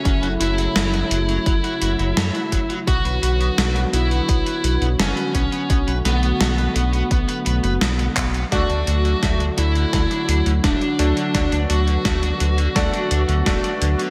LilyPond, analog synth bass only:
\new Staff \with { instrumentName = "Analog synth bass" } { \clef bass \time 4/4 \key d \lydian \tempo 4 = 85 fis,,16 fis,,16 fis,,8 fis,,8 fis,,8 fis,,16 r16 fis,,16 fis,,16 fis,16 r16 fis,,16 r16 | b,,16 b,,16 b,,8 b,,8 b,,8 b,,16 r16 b,,16 b,,16 fis,,16 r16 b,,16 r16 | b,,16 b,,16 b,,8 b,,8 b,,8 b,,16 r16 b,,16 fis,,16 b,,8 b,,8 | d,16 d,16 d,8 d,8 d,8 d,16 r16 d,16 d,16 d,,16 r16 d,16 r16 |
d,16 d,16 d,8 d,8 d,8 d,16 r16 d,16 d,16 d,,16 r16 d,16 r16 | }